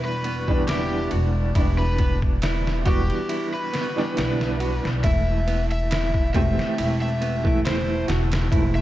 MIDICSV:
0, 0, Header, 1, 6, 480
1, 0, Start_track
1, 0, Key_signature, 1, "minor"
1, 0, Tempo, 869565
1, 861, Time_signature, 4, 2, 24, 8
1, 4865, End_track
2, 0, Start_track
2, 0, Title_t, "Electric slide guitar"
2, 0, Program_c, 0, 29
2, 28, Note_on_c, 0, 71, 93
2, 346, Note_off_c, 0, 71, 0
2, 378, Note_on_c, 0, 67, 79
2, 597, Note_off_c, 0, 67, 0
2, 985, Note_on_c, 0, 71, 88
2, 1201, Note_off_c, 0, 71, 0
2, 1583, Note_on_c, 0, 67, 96
2, 1912, Note_off_c, 0, 67, 0
2, 1952, Note_on_c, 0, 71, 99
2, 2693, Note_off_c, 0, 71, 0
2, 2784, Note_on_c, 0, 76, 97
2, 3112, Note_off_c, 0, 76, 0
2, 3156, Note_on_c, 0, 76, 96
2, 3470, Note_off_c, 0, 76, 0
2, 3497, Note_on_c, 0, 76, 104
2, 3829, Note_off_c, 0, 76, 0
2, 3874, Note_on_c, 0, 76, 100
2, 4189, Note_off_c, 0, 76, 0
2, 4230, Note_on_c, 0, 72, 81
2, 4443, Note_off_c, 0, 72, 0
2, 4831, Note_on_c, 0, 76, 92
2, 4865, Note_off_c, 0, 76, 0
2, 4865, End_track
3, 0, Start_track
3, 0, Title_t, "Clean electric guitar"
3, 0, Program_c, 1, 27
3, 138, Note_on_c, 1, 59, 96
3, 213, Note_off_c, 1, 59, 0
3, 379, Note_on_c, 1, 64, 76
3, 609, Note_off_c, 1, 64, 0
3, 617, Note_on_c, 1, 66, 75
3, 692, Note_off_c, 1, 66, 0
3, 858, Note_on_c, 1, 64, 86
3, 982, Note_off_c, 1, 64, 0
3, 1095, Note_on_c, 1, 59, 97
3, 1171, Note_off_c, 1, 59, 0
3, 1341, Note_on_c, 1, 64, 85
3, 1570, Note_off_c, 1, 64, 0
3, 1575, Note_on_c, 1, 66, 81
3, 1651, Note_off_c, 1, 66, 0
3, 1817, Note_on_c, 1, 64, 77
3, 1941, Note_off_c, 1, 64, 0
3, 2058, Note_on_c, 1, 59, 96
3, 2133, Note_off_c, 1, 59, 0
3, 2299, Note_on_c, 1, 64, 78
3, 2529, Note_off_c, 1, 64, 0
3, 2540, Note_on_c, 1, 66, 81
3, 2614, Note_off_c, 1, 66, 0
3, 2783, Note_on_c, 1, 64, 87
3, 2904, Note_off_c, 1, 64, 0
3, 3022, Note_on_c, 1, 59, 103
3, 3095, Note_off_c, 1, 59, 0
3, 3260, Note_on_c, 1, 64, 83
3, 3489, Note_off_c, 1, 64, 0
3, 3504, Note_on_c, 1, 66, 76
3, 3576, Note_off_c, 1, 66, 0
3, 3742, Note_on_c, 1, 64, 86
3, 3864, Note_off_c, 1, 64, 0
3, 3982, Note_on_c, 1, 59, 99
3, 4055, Note_off_c, 1, 59, 0
3, 4221, Note_on_c, 1, 64, 82
3, 4450, Note_off_c, 1, 64, 0
3, 4461, Note_on_c, 1, 66, 81
3, 4534, Note_off_c, 1, 66, 0
3, 4700, Note_on_c, 1, 64, 92
3, 4823, Note_off_c, 1, 64, 0
3, 4865, End_track
4, 0, Start_track
4, 0, Title_t, "Felt piano"
4, 0, Program_c, 2, 0
4, 0, Control_c, 2, 64, 127
4, 0, Note_on_c, 2, 52, 88
4, 0, Note_on_c, 2, 55, 87
4, 0, Note_on_c, 2, 59, 83
4, 0, Note_on_c, 2, 62, 79
4, 0, Note_on_c, 2, 66, 106
4, 263, Note_off_c, 2, 52, 0
4, 263, Note_on_c, 2, 52, 102
4, 271, Note_off_c, 2, 55, 0
4, 271, Note_on_c, 2, 55, 90
4, 277, Note_off_c, 2, 59, 0
4, 277, Note_on_c, 2, 59, 91
4, 280, Note_off_c, 2, 62, 0
4, 280, Note_on_c, 2, 62, 103
4, 830, Note_off_c, 2, 52, 0
4, 834, Note_off_c, 2, 55, 0
4, 837, Note_off_c, 2, 59, 0
4, 839, Note_off_c, 2, 62, 0
4, 852, Note_on_c, 2, 52, 73
4, 859, Note_on_c, 2, 55, 66
4, 866, Note_on_c, 2, 59, 67
4, 872, Note_on_c, 2, 62, 88
4, 1550, Note_off_c, 2, 52, 0
4, 1553, Note_off_c, 2, 55, 0
4, 1556, Note_off_c, 2, 59, 0
4, 1560, Note_off_c, 2, 62, 0
4, 1576, Note_on_c, 2, 52, 94
4, 1581, Note_on_c, 2, 55, 86
4, 1582, Note_on_c, 2, 59, 88
4, 1585, Note_off_c, 2, 66, 0
4, 1585, Note_on_c, 2, 66, 109
4, 1699, Note_off_c, 2, 52, 0
4, 1701, Note_off_c, 2, 55, 0
4, 1702, Note_off_c, 2, 59, 0
4, 1703, Note_off_c, 2, 66, 0
4, 2183, Note_on_c, 2, 52, 105
4, 2188, Note_on_c, 2, 55, 90
4, 2195, Note_on_c, 2, 59, 94
4, 2200, Note_on_c, 2, 62, 109
4, 2751, Note_off_c, 2, 52, 0
4, 2753, Note_off_c, 2, 55, 0
4, 2756, Note_off_c, 2, 59, 0
4, 2759, Note_off_c, 2, 62, 0
4, 2777, Note_on_c, 2, 52, 74
4, 2781, Note_on_c, 2, 57, 66
4, 2788, Control_c, 2, 64, 0
4, 2793, Note_on_c, 2, 64, 82
4, 2876, Control_c, 2, 64, 127
4, 3472, Note_off_c, 2, 52, 0
4, 3474, Note_off_c, 2, 57, 0
4, 3480, Note_off_c, 2, 64, 0
4, 3501, Note_on_c, 2, 52, 95
4, 3504, Note_on_c, 2, 57, 91
4, 3507, Note_on_c, 2, 60, 88
4, 3510, Note_on_c, 2, 67, 103
4, 3621, Note_off_c, 2, 52, 0
4, 3623, Note_off_c, 2, 57, 0
4, 3624, Note_off_c, 2, 60, 0
4, 3625, Note_off_c, 2, 67, 0
4, 4102, Note_on_c, 2, 52, 104
4, 4111, Note_on_c, 2, 57, 91
4, 4122, Note_on_c, 2, 64, 115
4, 4670, Note_off_c, 2, 52, 0
4, 4674, Note_off_c, 2, 57, 0
4, 4680, Note_off_c, 2, 64, 0
4, 4697, Note_on_c, 2, 52, 78
4, 4701, Note_on_c, 2, 57, 75
4, 4714, Note_on_c, 2, 64, 84
4, 4865, Note_off_c, 2, 52, 0
4, 4865, Note_off_c, 2, 57, 0
4, 4865, Note_off_c, 2, 64, 0
4, 4865, End_track
5, 0, Start_track
5, 0, Title_t, "Upright bass"
5, 0, Program_c, 3, 32
5, 0, Note_on_c, 3, 28, 81
5, 602, Note_off_c, 3, 28, 0
5, 620, Note_on_c, 3, 28, 94
5, 834, Note_off_c, 3, 28, 0
5, 860, Note_on_c, 3, 28, 98
5, 1559, Note_off_c, 3, 28, 0
5, 1582, Note_on_c, 3, 28, 100
5, 1695, Note_off_c, 3, 28, 0
5, 2307, Note_on_c, 3, 35, 82
5, 2648, Note_off_c, 3, 35, 0
5, 2669, Note_on_c, 3, 35, 89
5, 2767, Note_off_c, 3, 35, 0
5, 2782, Note_on_c, 3, 28, 99
5, 3480, Note_off_c, 3, 28, 0
5, 3505, Note_on_c, 3, 28, 96
5, 3616, Note_off_c, 3, 28, 0
5, 3749, Note_on_c, 3, 28, 94
5, 4444, Note_off_c, 3, 28, 0
5, 4464, Note_on_c, 3, 28, 94
5, 4676, Note_off_c, 3, 28, 0
5, 4703, Note_on_c, 3, 28, 107
5, 4865, Note_off_c, 3, 28, 0
5, 4865, End_track
6, 0, Start_track
6, 0, Title_t, "Drums"
6, 134, Note_on_c, 9, 51, 69
6, 189, Note_off_c, 9, 51, 0
6, 266, Note_on_c, 9, 36, 89
6, 321, Note_off_c, 9, 36, 0
6, 373, Note_on_c, 9, 51, 83
6, 381, Note_on_c, 9, 38, 111
6, 428, Note_off_c, 9, 51, 0
6, 436, Note_off_c, 9, 38, 0
6, 612, Note_on_c, 9, 51, 63
6, 667, Note_off_c, 9, 51, 0
6, 857, Note_on_c, 9, 36, 117
6, 857, Note_on_c, 9, 51, 91
6, 912, Note_off_c, 9, 51, 0
6, 913, Note_off_c, 9, 36, 0
6, 1095, Note_on_c, 9, 51, 67
6, 1098, Note_on_c, 9, 36, 97
6, 1151, Note_off_c, 9, 51, 0
6, 1153, Note_off_c, 9, 36, 0
6, 1227, Note_on_c, 9, 36, 88
6, 1283, Note_off_c, 9, 36, 0
6, 1336, Note_on_c, 9, 51, 89
6, 1343, Note_on_c, 9, 38, 118
6, 1391, Note_off_c, 9, 51, 0
6, 1398, Note_off_c, 9, 38, 0
6, 1476, Note_on_c, 9, 38, 59
6, 1531, Note_off_c, 9, 38, 0
6, 1576, Note_on_c, 9, 51, 68
6, 1579, Note_on_c, 9, 36, 97
6, 1631, Note_off_c, 9, 51, 0
6, 1634, Note_off_c, 9, 36, 0
6, 1710, Note_on_c, 9, 51, 46
6, 1765, Note_off_c, 9, 51, 0
6, 1818, Note_on_c, 9, 51, 92
6, 1873, Note_off_c, 9, 51, 0
6, 2062, Note_on_c, 9, 51, 68
6, 2070, Note_on_c, 9, 38, 56
6, 2117, Note_off_c, 9, 51, 0
6, 2125, Note_off_c, 9, 38, 0
6, 2199, Note_on_c, 9, 38, 37
6, 2254, Note_off_c, 9, 38, 0
6, 2302, Note_on_c, 9, 51, 84
6, 2310, Note_on_c, 9, 38, 114
6, 2357, Note_off_c, 9, 51, 0
6, 2365, Note_off_c, 9, 38, 0
6, 2436, Note_on_c, 9, 38, 61
6, 2491, Note_off_c, 9, 38, 0
6, 2541, Note_on_c, 9, 51, 67
6, 2596, Note_off_c, 9, 51, 0
6, 2678, Note_on_c, 9, 38, 58
6, 2733, Note_off_c, 9, 38, 0
6, 2780, Note_on_c, 9, 51, 97
6, 2781, Note_on_c, 9, 36, 112
6, 2835, Note_off_c, 9, 51, 0
6, 2836, Note_off_c, 9, 36, 0
6, 3023, Note_on_c, 9, 51, 68
6, 3078, Note_off_c, 9, 51, 0
6, 3151, Note_on_c, 9, 51, 42
6, 3206, Note_off_c, 9, 51, 0
6, 3262, Note_on_c, 9, 51, 96
6, 3270, Note_on_c, 9, 38, 114
6, 3317, Note_off_c, 9, 51, 0
6, 3325, Note_off_c, 9, 38, 0
6, 3391, Note_on_c, 9, 36, 94
6, 3446, Note_off_c, 9, 36, 0
6, 3502, Note_on_c, 9, 36, 92
6, 3502, Note_on_c, 9, 51, 69
6, 3557, Note_off_c, 9, 36, 0
6, 3557, Note_off_c, 9, 51, 0
6, 3639, Note_on_c, 9, 38, 53
6, 3694, Note_off_c, 9, 38, 0
6, 3744, Note_on_c, 9, 51, 92
6, 3800, Note_off_c, 9, 51, 0
6, 3984, Note_on_c, 9, 51, 72
6, 4039, Note_off_c, 9, 51, 0
6, 4112, Note_on_c, 9, 36, 96
6, 4167, Note_off_c, 9, 36, 0
6, 4225, Note_on_c, 9, 51, 84
6, 4233, Note_on_c, 9, 38, 119
6, 4280, Note_off_c, 9, 51, 0
6, 4288, Note_off_c, 9, 38, 0
6, 4462, Note_on_c, 9, 51, 79
6, 4469, Note_on_c, 9, 38, 101
6, 4517, Note_off_c, 9, 51, 0
6, 4525, Note_off_c, 9, 38, 0
6, 4591, Note_on_c, 9, 51, 78
6, 4598, Note_on_c, 9, 38, 115
6, 4646, Note_off_c, 9, 51, 0
6, 4654, Note_off_c, 9, 38, 0
6, 4702, Note_on_c, 9, 36, 112
6, 4705, Note_on_c, 9, 51, 97
6, 4757, Note_off_c, 9, 36, 0
6, 4760, Note_off_c, 9, 51, 0
6, 4865, End_track
0, 0, End_of_file